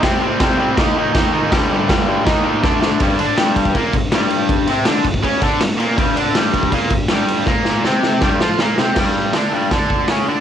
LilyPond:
<<
  \new Staff \with { instrumentName = "Overdriven electric guitar" } { \clef bass \time 4/4 \key g \minor \tempo 4 = 161 <c g c'>8 <c g c'>8 <c g c'>8 <c g c'>8 <ees bes ees'>8 <ees bes ees'>8 <ees bes ees'>8 <ees bes ees'>8 | <g, d g>8 <g, d g>8 <g, d g>8 <g, d g>8 <ees bes ees'>8 <ees bes ees'>8 <d a d'>8 <d a d'>8 | <g, g>8 <d d'>8 <g, g>4 <bes, bes>8 g,8 <g, g>4~ | <g, g>8 <c c'>8 <d d'>8 g,8 <cis cis'>8 <d d'>8 g,8 <bes, bes>8 |
<g, g>8 <d d'>8 <g, g>4 <bes, bes>8 g,8 <g, g>4 | <bes, bes>4 <c c'>4 <g, g>8 <f f'>8 <bes, bes>8 <c c'>8 | <g, g>4 <d d'>8 <g, g>8 <d d'>4 <cis cis'>8 <d d'>8 | }
  \new DrumStaff \with { instrumentName = "Drums" } \drummode { \time 4/4 <cymc bd sn>4 <cymc bd sn>4 <cymc bd sn>4 <cymc bd sn>4 | <cymc bd sn>4 <cymc bd sn>4 <cymc bd sn>4 <bd sn>8 sn8 | <bd cymr>8 cymr8 <cymr sn>8 <bd cymr>16 bd16 <bd cymr>8 <bd cymr>8 <cymr sn>8 cymr8 | <bd cymr>8 cymr8 <cymr sn>8 <bd cymr>16 bd16 <bd cymr>8 <bd cymr>8 <cymr sn>8 cymr8 |
<bd cymr>8 cymr8 <cymr sn>8 <bd cymr>16 bd16 <bd cymr>8 <bd cymr>8 <cymr sn>8 cymr8 | <bd sn>8 sn8 sn8 sn8 <bd sn>8 sn8 sn8 sn8 | <cymc bd sn>4 <hho sn>4 <hho bd sn>8 bd8 <hho sn>4 | }
>>